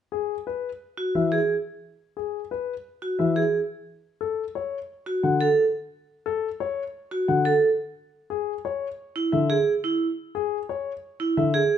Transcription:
0.12 0.34 G#4 soft
0.47 0.69 B4 soft
0.97 1.20 F#4 soft
1.15 1.37 E3 soft
1.15 1.37 E5 soft
1.32 1.54 G#4 medium
2.17 2.39 G#4 soft
2.51 2.73 B4 soft
3.02 3.24 F#4 soft
3.19 3.41 E3 soft
3.19 3.41 E5 soft
3.36 3.58 G#4 medium
4.21 4.43 A4 soft
4.55 4.77 C#5 soft
5.06 5.29 F#4 soft
5.23 5.46 D3 soft
5.23 5.46 F#5 soft
5.41 5.63 A4 medium
6.26 6.48 A4 medium
6.60 6.82 C#5 soft
7.11 7.33 F#4 soft
7.28 7.50 D3 soft
7.28 7.50 F#5 soft
7.45 7.67 A4 medium
8.30 8.52 G#4 medium
8.65 8.87 C#5 soft
9.16 9.38 E4 medium
9.32 9.55 D3 soft
9.32 9.55 E5 medium
9.50 9.72 G#4 medium
9.84 10.06 E4 medium
10.35 10.57 G#4 medium
10.69 10.91 C#5 soft
11.20 11.42 E4 soft
11.37 11.59 D3 soft
11.37 11.59 E5 medium
11.54 11.76 G#4 medium

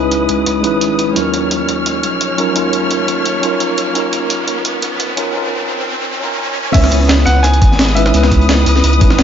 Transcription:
0.00 0.28 C#2 loud
0.00 0.61 G#3 medium
0.00 0.62 C#4 medium
0.00 0.64 D#4 medium
0.00 0.65 E4 medium
0.00 0.67 B4 loud
0.00 1.12 B4 medium
0.00 1.12 D#6 medium
0.00 riser medium
0.11 closed hi-hat medium
0.29 0.45 C#2 medium
0.29 closed hi-hat medium
0.46 0.65 C#2 medium
0.46 closed hi-hat medium
0.61 1.15 G#1 medium
0.61 1.13 G#3 medium
0.61 1.13 C#4 medium
0.61 1.14 D#4 medium
0.61 closed hi-hat medium
0.65 1.15 E4 medium
0.65 1.16 B4 loud
0.81 closed hi-hat medium
0.99 closed hi-hat medium
1.13 1.67 D#2 loud
1.13 2.35 F#3 medium
1.13 2.36 C#4 medium
1.13 2.36 D#4 medium
1.13 5.31 C#5 medium
1.13 5.31 F6 medium
1.13 closed hi-hat medium
1.18 2.37 F4 medium
1.18 2.38 A#4 medium
1.34 closed hi-hat medium
1.51 closed hi-hat medium
1.69 2.05 D#2 medium
1.69 closed hi-hat medium
1.86 closed hi-hat medium
2.03 2.54 A#1 medium
2.03 closed hi-hat medium
2.21 closed hi-hat medium
2.37 2.51 F#3 medium
2.37 2.53 C#4 medium
2.37 2.54 D#4 medium
2.37 2.54 F4 medium
2.37 2.54 A#4 loud
2.37 closed hi-hat medium
2.53 3.07 D#2 loud
2.53 3.39 F#3 medium
2.53 3.40 C#4 medium
2.53 3.41 D#4 medium
2.53 closed hi-hat medium
2.57 3.42 F4 medium
2.57 3.42 A#4 medium
2.73 closed hi-hat medium
2.91 closed hi-hat medium
3.08 3.24 D#2 medium
3.08 closed hi-hat medium
3.25 3.45 D#2 medium
3.25 closed hi-hat medium
3.40 3.94 A#1 loud
3.40 3.91 F#3 medium
3.40 3.93 C#4 medium
3.40 3.93 D#4 medium
3.40 closed hi-hat medium
3.44 3.94 F4 medium
3.44 3.95 A#4 loud
3.60 closed hi-hat medium
3.78 closed hi-hat medium
3.92 4.46 D#2 loud
3.92 5.14 F#3 medium
3.92 5.15 C#4 medium
3.92 5.15 D#4 medium
3.92 closed hi-hat medium
3.97 5.16 F4 medium
3.97 5.17 A#4 medium
4.13 closed hi-hat medium
4.30 closed hi-hat loud
4.48 4.84 D#2 loud
4.48 closed hi-hat medium
4.65 closed hi-hat medium
4.82 5.33 A#1 medium
4.82 closed hi-hat medium
5.00 closed hi-hat loud
5.16 5.31 F#3 medium
5.16 5.32 C#4 medium
5.16 5.33 D#4 medium
5.16 5.33 F4 medium
5.16 5.34 A#4 loud
5.16 closed hi-hat medium
5.32 6.18 F#3 medium
5.32 6.19 C#4 medium
5.32 6.20 D#4 medium
5.36 6.21 F4 medium
5.36 6.21 A#4 medium
6.19 6.71 F#3 medium
6.19 6.72 C#4 medium
6.19 6.72 D#4 medium
6.23 6.73 F4 medium
6.23 6.74 A#4 loud
6.71 7.25 C#2 loud
6.71 7.93 G#3 medium
6.71 7.95 B3 medium
6.71 7.94 C#4 medium
6.71 9.23 B4 medium
6.71 7.22 E5 medium
6.71 9.23 D#6 medium
6.71 kick loud
6.71 closed hi-hat loud
6.71 crash loud
6.76 7.95 E4 medium
6.76 7.96 B4 medium
6.84 snare soft
6.91 closed hi-hat medium
7.09 snare loud
7.09 closed hi-hat loud
7.09 closed hi-hat medium
7.19 snare soft
7.26 7.63 C#2 medium
7.26 7.44 F#5 loud
7.26 snare soft
7.26 closed hi-hat medium
7.43 7.97 G#5 loud
7.43 snare soft
7.43 closed hi-hat medium
7.43 closed hi-hat loud
7.53 closed hi-hat soft
7.62 8.13 G#1 medium
7.62 kick loud
7.62 closed hi-hat medium
7.72 snare soft
7.79 snare loud
7.79 closed hi-hat medium
7.88 snare medium
7.88 closed hi-hat soft
7.95 8.10 G#3 medium
7.95 8.11 C#4 medium
7.95 8.12 D#4 medium
7.95 8.12 E4 medium
7.95 8.13 B4 loud
7.95 8.44 E5 medium
7.95 closed hi-hat medium
8.06 snare medium
8.11 8.65 C#2 loud
8.11 8.97 G#3 medium
8.11 8.99 B3 medium
8.11 8.98 C#4 medium
8.11 closed hi-hat medium
8.15 9.00 E4 medium
8.15 9.01 B4 medium
8.23 snare medium
8.23 snare soft
8.31 kick medium
8.31 closed hi-hat medium
8.41 closed hi-hat soft
8.49 snare loud
8.49 closed hi-hat medium
8.66 8.82 C#2 loud
8.66 closed hi-hat medium
8.66 open hi-hat medium
8.76 snare soft
8.84 9.03 C#2 medium
8.84 closed hi-hat medium
8.93 closed hi-hat soft
8.98 9.18 G#1 loud
8.98 9.23 G#3 medium
8.98 9.23 C#4 medium
8.98 9.23 D#4 medium
8.98 kick loud
8.98 closed hi-hat medium
9.03 9.23 E4 medium
9.03 9.23 B4 loud
9.10 snare soft
9.10 snare medium
9.18 9.23 G#1 medium
9.18 snare loud
9.18 closed hi-hat medium
9.18 open hi-hat medium

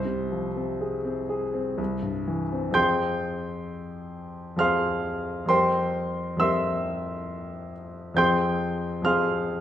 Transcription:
0.00 1.74 C2 soft
0.00 2.27 C5 medium
0.05 0.45 C3 soft
0.32 0.71 F3 soft
0.56 0.96 C4 soft
0.81 1.20 G#4 soft
1.05 1.44 C4 soft
1.29 1.69 G#4 soft
1.54 1.78 C4 soft
1.78 2.73 C2 soft
2.02 2.42 G2 soft
2.28 2.67 E3 soft
2.53 2.72 C4 soft
2.71 4.55 F2 medium
2.71 4.55 F3 soft
2.71 4.56 C4 soft
2.71 4.56 G#4 soft
2.71 4.56 G5 medium
2.71 4.56 C6 medium
2.71 4.60 G6 medium
4.56 5.44 F2 medium
4.56 5.46 F3 soft
4.56 5.47 C4 soft
4.56 5.47 G#4 soft
4.56 5.46 F5 medium
4.56 5.46 C6 medium
4.56 5.49 F6 medium
5.46 6.35 F2 medium
5.46 6.36 G3 soft
5.46 6.37 C4 soft
5.46 6.38 A#4 soft
5.46 6.37 C5 medium
5.46 6.37 G5 medium
5.46 6.39 C6 medium
6.37 8.13 F2 medium
6.37 8.13 G3 soft
6.37 8.14 C4 soft
6.37 8.15 A#4 soft
6.37 7.71 E5 medium
6.37 7.71 C6 medium
6.37 7.74 E6 medium
8.14 9.01 F2 medium
8.14 9.02 F3 soft
8.14 9.03 C4 soft
8.14 9.04 G#4 soft
8.14 9.03 G5 medium
8.14 9.03 C6 medium
8.14 9.06 G6 medium
9.02 9.61 F2 soft
9.02 9.61 F3 soft
9.02 9.61 C4 soft
9.02 9.61 F5 medium
9.02 9.61 C6 medium
9.02 9.61 F6 medium
9.06 9.61 G#4 soft

